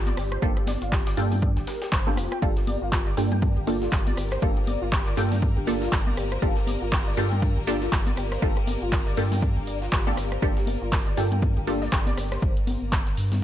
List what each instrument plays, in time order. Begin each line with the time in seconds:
Already playing: sub bass G1, synth stab A#3 D4 F4 G4 A4
0.06 synth pluck D5, closed hi-hat, high conga
0.17 sub bass G1, synth pluck G4, cross-stick, open hi-hat
0.32 synth pluck C5, cross-stick, closed hi-hat
0.42 sub bass G1, synth stab A#3 D4 F4 G4 A4, synth pluck G4, kick, closed hi-hat, shaker
0.57 synth pluck G4, cross-stick, closed hi-hat
0.67 synth pluck D5, snare, open hi-hat, high conga, shaker
0.82 sub bass G1, synth pluck F4, closed hi-hat
0.92 synth pluck G4, kick, snare, clap, closed hi-hat, shaker
1.07 synth pluck D5, snare, closed hi-hat, shaker
1.17 sub bass G2, synth stab A#3 D4 F4 G4 A4, synth pluck G5, closed hi-hat, open hi-hat
1.32 synth pluck G5, open hi-hat, high conga, low conga, shaker
1.42 synth pluck D4, kick, closed hi-hat, shaker
1.57 sub bass G1, synth pluck G4, snare, closed hi-hat
1.67 synth pluck A#4, snare, open hi-hat, shaker
1.82 synth pluck G4, snare, closed hi-hat, shaker
1.92 sub bass G1, synth pluck C5, kick, snare, clap, closed hi-hat, shaker
2.07 synth stab A#3 D4 F4 G4 A4, synth pluck G5, closed hi-hat, high conga
2.17 sub bass F1, synth pluck F4, cross-stick, open hi-hat, shaker
2.32 synth pluck G5, cross-stick, closed hi-hat
2.42 sub bass G1, violin section A#3 A#4, synth stab A#3 D4 F4 G4 A4, synth pluck G4, kick, closed hi-hat, shaker
2.57 synth pluck G4, snare, closed hi-hat
2.67 synth pluck D5, open hi-hat, high conga, shaker
2.82 sub bass G1, synth pluck F4
2.92 synth pluck G4, kick, snare, clap, closed hi-hat, shaker
3.07 synth pluck D5, closed hi-hat
3.17 sub bass G2, synth stab A#3 D4 F4 G4 A4, synth pluck G5, snare, open hi-hat, shaker
3.32 synth pluck G5, closed hi-hat, high conga, low conga
3.42 synth pluck D4, kick, closed hi-hat, shaker
3.57 sub bass G1, synth pluck G4, closed hi-hat
3.67 synth stab A#3 D4 F4 G4 A4, synth pluck D5, open hi-hat, shaker
3.82 synth pluck F4, snare, closed hi-hat
3.92 sub bass G1, synth pluck G4, kick, snare, clap, closed hi-hat, shaker
4.07 synth pluck D5, closed hi-hat, high conga
4.17 sub bass G1, synth pluck G4, cross-stick, open hi-hat, shaker
4.32 synth pluck C5, cross-stick, snare, closed hi-hat
4.42 sub bass G1, synth stab A#3 D4 F4 G4 A4, synth pluck G4, kick, closed hi-hat, shaker
4.57 synth pluck G4, closed hi-hat
4.67 synth pluck D5, open hi-hat, high conga, shaker
4.82 sub bass G1, synth pluck F4
4.92 synth pluck G4, kick, snare, clap, closed hi-hat, shaker
5.07 synth pluck D5, snare, closed hi-hat
5.17 sub bass G2, synth stab A#3 D4 F4 G4 A4, synth pluck G5, open hi-hat, shaker
5.32 synth pluck G5, snare, open hi-hat, high conga, low conga
5.42 synth pluck D4, kick, closed hi-hat, shaker
5.57 sub bass G1, synth pluck G4, closed hi-hat
5.67 synth stab A#3 D4 F4 G4 A4, synth pluck D5, open hi-hat, shaker
5.82 synth pluck F4, snare, closed hi-hat
5.92 sub bass G1, synth pluck G4, kick, snare, clap, closed hi-hat, shaker
6.07 synth pluck D5, high conga
6.17 sub bass G1, synth pluck G4, cross-stick, open hi-hat, shaker
6.32 synth pluck C5, cross-stick, closed hi-hat
6.42 sub bass G1, synth stab A#3 D4 F4 G4 A4, synth pluck G4, kick, closed hi-hat, shaker
6.57 synth pluck G4, snare, closed hi-hat
6.67 synth pluck D5, open hi-hat, high conga, shaker
6.82 sub bass G1, synth pluck F4
6.92 synth pluck G4, kick, snare, clap, closed hi-hat, shaker
7.07 synth pluck D5, closed hi-hat
7.17 sub bass G2, synth stab A#3 D4 F4 G4 A4, synth pluck G5, snare, open hi-hat, shaker
7.32 synth pluck G5, closed hi-hat, high conga, low conga
7.42 synth pluck D4, kick, closed hi-hat, shaker
7.57 sub bass G1, synth pluck G4, closed hi-hat
7.67 synth stab A#3 D4 F4 G4 A4, synth pluck D5, open hi-hat, shaker
7.82 synth pluck F4, snare, closed hi-hat
7.92 sub bass G1, synth pluck G4, kick, snare, clap, closed hi-hat, shaker
8.07 synth pluck D5, closed hi-hat, high conga
8.17 sub bass G1, synth pluck G4, cross-stick, open hi-hat, shaker
8.32 synth pluck C5, cross-stick, snare, closed hi-hat
8.42 sub bass G1, synth stab A#3 D4 F4 G4 A4, synth pluck G4, kick, closed hi-hat, shaker
8.57 synth pluck G4, cross-stick, closed hi-hat
8.67 synth pluck D5, open hi-hat, high conga, shaker
8.82 sub bass G1, synth pluck F4, closed hi-hat
8.92 synth pluck G4, kick, snare, clap, closed hi-hat, shaker
9.07 synth pluck D5, snare, closed hi-hat
9.17 sub bass G2, synth stab A#3 D4 F4 G4 A4, synth pluck G5, open hi-hat, shaker
9.31 synth pluck G5, snare, open hi-hat, high conga, low conga
9.42 synth pluck D4, kick, closed hi-hat, shaker
9.57 sub bass G1, synth pluck G4, closed hi-hat
9.67 synth pluck D5, open hi-hat, shaker
9.82 synth pluck F4, snare, closed hi-hat
9.92 sub bass G1, synth pluck G4, kick, snare, clap, closed hi-hat, shaker
10.07 synth stab A#3 D4 F4 G4 A4, synth pluck D5, high conga
10.17 sub bass G1, synth pluck G4, cross-stick, open hi-hat, shaker
10.32 synth pluck C5, cross-stick, closed hi-hat
10.42 sub bass G1, synth stab A#3 D4 F4 G4 A4, synth pluck G4, kick, closed hi-hat, shaker
10.57 synth pluck G4, snare, closed hi-hat
10.67 synth pluck D5, open hi-hat, high conga, shaker
10.82 sub bass G1, synth pluck F4
10.92 synth pluck G4, kick, snare, clap, closed hi-hat, shaker
11.07 synth pluck D5, closed hi-hat
11.17 sub bass G2, synth stab A#3 D4 F4 G4 A4, synth pluck G5, snare, open hi-hat, shaker
11.32 synth pluck G5, closed hi-hat, high conga, low conga
11.42 synth pluck D4, kick, closed hi-hat, shaker
11.57 sub bass G1, synth pluck G4, closed hi-hat
11.67 synth stab A#3 D4 F4 G4 A4, synth pluck D5, open hi-hat, shaker
11.82 synth pluck D5, snare, closed hi-hat
11.92 sub bass G1, synth pluck G4, kick, snare, clap, closed hi-hat, shaker
12.07 synth pluck D5, closed hi-hat, high conga
12.17 sub bass G1, synth pluck G4, cross-stick, open hi-hat, shaker
12.32 synth pluck C5, cross-stick, snare, closed hi-hat
12.42 sub bass G1, kick, closed hi-hat, shaker
12.57 closed hi-hat
12.67 open hi-hat, high conga, shaker
12.82 sub bass G1
12.92 kick, snare, clap, closed hi-hat, shaker
13.07 snare, closed hi-hat
13.17 sub bass G2, open hi-hat, shaker
13.32 snare, open hi-hat, high conga, low conga